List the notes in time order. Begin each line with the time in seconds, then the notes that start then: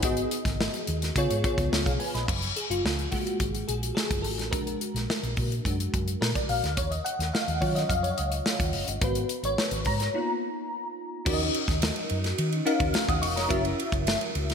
Already playing: D#4 B4
0.03 G#1 B3 F#4 G#4 D#5, kick, closed hi-hat
0.17 closed hi-hat
0.31 closed hi-hat
0.45 G#1, kick, snare, closed hi-hat
0.61 snare
0.74 closed hi-hat
0.87 D#2, closed hi-hat
1.02 snare, closed hi-hat
1.16 C#3 B3 F4 G#4 C#5, kick, closed hi-hat
1.30 G#2, closed hi-hat
1.44 B3 F4 G#4 C#5, kick, closed hi-hat
1.58 C#2, kick, closed hi-hat
1.72 C#2 F4 C#5, snare
1.86 B1 G#4 F5, kick, closed hi-hat
2.00 B4 G#5, open hi-hat
2.14 A#1 D#5 B5, snare, closed hi-hat
2.28 F#1, kick, crash
2.42 closed hi-hat
2.56 G#4, closed hi-hat
2.70 F#1 F4, closed hi-hat
2.84 C#2, snare
2.99 closed hi-hat
3.11 G#3 A#3 F4 F#4, kick, open hi-hat
3.27 closed hi-hat
3.40 G#1, kick, closed hi-hat
3.55 closed hi-hat
3.68 A#1 G#4, closed hi-hat
3.83 closed hi-hat
3.95 G#4, snare
4.11 F#1, kick, closed hi-hat
4.22 G#1 A4, open hi-hat
4.38 A1, snare, closed hi-hat
4.51 A#1 G#3 D4 F#4 A#4, kick, closed hi-hat
4.67 closed hi-hat
4.81 closed hi-hat
4.94 A#1, snare, closed hi-hat
5.10 snare
5.23 A#1, closed hi-hat
5.37 A#2, kick, open hi-hat
5.52 closed hi-hat
5.65 F#2 G#3 D4 F#4, kick, closed hi-hat
5.80 closed hi-hat
5.94 F#2, kick, closed hi-hat
6.08 closed hi-hat
6.21 A#2 A#4, snare
6.35 D5, kick, closed hi-hat
6.49 A#1 F5, open hi-hat
6.63 D2, snare, closed hi-hat
6.77 D#2 C#5, kick, closed hi-hat
6.91 D#5, closed hi-hat
7.05 F#5, closed hi-hat
7.19 D#2, snare, closed hi-hat
7.34 F5, snare
7.48 D#2, closed hi-hat
7.60 D#3 F#3 C#4 F4 C#5, kick, open hi-hat
7.75 D#5, snare, closed hi-hat
7.89 F2 F5, kick, closed hi-hat
8.03 C#5, closed hi-hat
8.17 C#2 D#5, closed hi-hat
8.32 closed hi-hat
8.46 snare
8.60 D#2, kick, closed hi-hat
8.73 F#1, open hi-hat
8.88 G1, closed hi-hat
9.01 G#1 B3 F#4 A#4 B4, kick, closed hi-hat
9.15 closed hi-hat
9.29 closed hi-hat
9.43 G#1 C#5, closed hi-hat
9.58 snare
9.71 G#1, closed hi-hat
9.85 G#2 A#5, kick, open hi-hat
10.00 snare, closed hi-hat
10.14 A#3 B3 D#4 F4
11.25 D#2 C#4 D#4 F#4 A#4 D5, kick, crash
11.33 D#5
11.40 ride
11.54 ride
11.68 D#2, kick, snare, ride
11.82 snare, ride
11.96 ride
12.09 F#2, ride
12.24 snare, ride
12.38 D#3, ride
12.52 ride
12.65 C#4 D#4 F#4 A#4 F5, ride
12.80 D#2, kick, ride
12.94 snare, ride
13.09 D#2 F#5 D#6, kick, ride
13.22 E1 F5 C#6, open hi-hat, ride
13.36 F1 C#5 A#5, snare, ride
13.49 F#1 C#4 E4 F#4 A#4 E5, kick, hi-hat pedal, ride
13.65 ride
13.79 ride
13.92 F#1, kick, ride
14.07 snare, ride
14.21 ride
14.35 C#2, ride
14.50 snare, ride